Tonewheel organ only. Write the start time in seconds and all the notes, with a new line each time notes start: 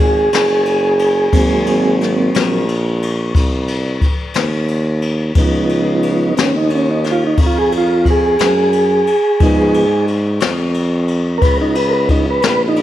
Already playing: G#4
1.33 F#3 A#3 C4
2.36 F#3 A#3 C4
5.36 F3 B3 D#4
6.37 C4
6.41 C#4
6.56 D#4
6.75 C#4
6.91 D#4
7.11 F4
7.27 D#4
7.46 F4
7.58 G#4
7.78 F4
8.10 G#4
9.40 F3 B3 D#4
11.38 A#4 B4
11.62 D#4
11.76 B4
11.89 A#4
11.93 B4
12.11 D#4
12.30 B4
12.44 A#4
12.50 B4
12.68 D#4